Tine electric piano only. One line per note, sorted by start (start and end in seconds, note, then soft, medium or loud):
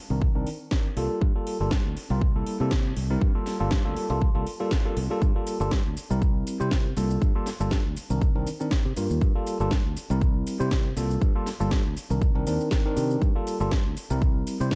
0.10 0.32 D#3 medium
0.10 0.32 C4 medium
0.10 0.32 D4 medium
0.10 0.32 A#4 medium
0.35 0.48 D#3 medium
0.35 0.48 C4 medium
0.35 0.48 D4 medium
0.35 0.48 A#4 medium
0.71 0.86 D#3 medium
0.71 0.86 C4 medium
0.71 0.86 D4 medium
0.71 0.86 A#4 medium
0.96 1.22 G3 medium
0.96 1.22 A#3 medium
0.96 1.22 F4 medium
0.96 1.22 A4 loud
1.35 1.57 G3 medium
1.35 1.57 A#3 medium
1.35 1.57 F4 medium
1.35 1.57 A4 medium
1.60 1.73 G3 medium
1.60 1.73 A#3 medium
1.60 1.73 F4 medium
1.60 1.73 A4 medium
2.10 2.20 G3 medium
2.10 2.20 C4 medium
2.10 2.20 F4 medium
2.10 2.20 A#4 medium
2.35 2.57 G3 medium
2.35 2.57 A#3 medium
2.35 2.57 E4 medium
2.35 2.57 A4 medium
2.60 2.73 G3 medium
2.60 2.73 A#3 medium
2.60 2.73 E4 medium
2.60 2.73 A4 medium
3.10 3.20 G3 medium
3.10 3.20 C4 medium
3.10 3.20 E4 medium
3.10 3.20 A#4 loud
3.35 3.57 G3 medium
3.35 3.57 A#3 medium
3.35 3.57 F4 medium
3.35 3.57 A4 loud
3.60 3.70 G3 medium
3.60 3.70 A#3 medium
3.60 3.70 F4 medium
3.60 3.70 A4 loud
3.85 4.07 G3 medium
3.85 4.07 A#3 medium
3.85 4.07 F4 medium
3.85 4.07 A4 loud
4.10 4.20 G3 medium
4.10 4.20 A#3 medium
4.10 4.20 F4 medium
4.10 4.20 A4 medium
4.35 4.45 G3 medium
4.35 4.45 A#3 medium
4.35 4.45 F4 medium
4.35 4.45 A4 loud
4.60 4.70 G3 medium
4.60 4.70 A#3 medium
4.60 4.70 F4 medium
4.60 4.70 A4 loud
4.85 4.95 G3 medium
4.85 4.95 A#3 medium
4.85 4.95 F4 medium
4.85 4.95 A4 loud
5.10 5.20 G3 loud
5.10 5.20 A#3 medium
5.10 5.20 F4 medium
5.10 5.20 A4 loud
5.35 5.57 G3 medium
5.35 5.57 A#3 medium
5.35 5.57 F4 medium
5.35 5.57 A4 loud
5.60 5.73 G3 medium
5.60 5.73 A#3 medium
5.60 5.73 F4 medium
5.60 5.73 A4 loud
6.10 6.57 G3 medium
6.10 6.57 C4 medium
6.10 6.57 E4 medium
6.10 6.57 A#4 loud
6.60 6.69 G3 medium
6.60 6.69 C4 medium
6.60 6.69 E4 medium
6.60 6.69 C5 loud
6.72 6.86 C4 medium
6.96 7.32 G3 medium
6.96 7.32 A#3 medium
6.96 7.32 F4 medium
6.96 7.32 A4 medium
7.35 7.48 G3 medium
7.35 7.48 A#3 medium
7.35 7.48 F4 medium
7.35 7.48 A4 loud
7.60 7.82 G3 medium
7.60 7.82 A#3 medium
7.60 7.82 F4 medium
7.60 7.82 A4 loud
8.10 8.32 D#3 medium
8.10 8.32 C4 medium
8.10 8.32 D4 medium
8.10 8.32 A#4 medium
8.35 8.48 D#3 medium
8.35 8.48 C4 medium
8.35 8.48 D4 medium
8.35 8.48 A#4 medium
8.60 8.82 D#3 medium
8.60 8.82 C4 medium
8.60 8.82 D4 medium
8.60 8.82 A#4 medium
8.96 9.32 G3 medium
8.96 9.32 A#3 medium
8.96 9.32 F4 medium
8.96 9.32 A#4 medium
9.35 9.57 G3 medium
9.35 9.57 A#3 medium
9.35 9.57 F4 medium
9.35 9.57 A4 loud
9.60 9.73 G3 medium
9.60 9.73 A#3 medium
9.60 9.73 F4 medium
9.60 9.73 A4 loud
10.10 10.57 G3 medium
10.10 10.57 C4 medium
10.10 10.57 E4 medium
10.10 10.57 A#4 loud
10.59 10.69 G3 medium
10.59 10.69 C4 medium
10.59 10.69 E4 medium
10.59 10.69 C5 loud
10.96 11.32 G3 medium
10.96 11.32 A#3 medium
10.96 11.32 F4 medium
10.96 11.32 A4 medium
11.35 11.48 G3 medium
11.35 11.48 A#3 medium
11.35 11.48 F4 medium
11.35 11.48 A4 loud
11.60 11.82 G3 medium
11.60 11.82 A#3 medium
11.60 11.82 F4 medium
11.60 11.82 A4 loud
12.10 12.32 D#3 medium
12.10 12.32 C4 medium
12.10 12.32 D4 medium
12.10 12.32 A#4 medium
12.35 12.44 D#3 medium
12.35 12.44 C4 medium
12.35 12.44 D4 medium
12.35 12.45 A#4 loud
12.46 12.68 D#3 medium
12.46 12.68 C4 medium
12.46 12.68 D4 medium
12.46 12.69 A#4 medium
12.72 12.82 C4 medium
12.72 12.82 D4 medium
12.72 12.82 A#4 medium
12.85 13.20 D#3 loud
12.85 13.20 C4 medium
12.85 13.21 D4 medium
12.85 13.21 A#4 loud
13.35 13.57 G3 medium
13.35 13.57 A#3 medium
13.35 13.57 F4 medium
13.35 13.57 A4 loud
13.60 13.73 G3 medium
13.60 13.73 A#3 medium
13.60 13.73 F4 medium
13.60 13.73 A4 loud
14.10 14.57 G3 medium
14.10 14.57 C4 medium
14.10 14.57 E4 medium
14.10 14.57 A#4 loud
14.60 14.69 G3 medium
14.60 14.69 C4 medium
14.60 14.69 E4 medium
14.60 14.69 C5 loud
14.72 14.75 C4 medium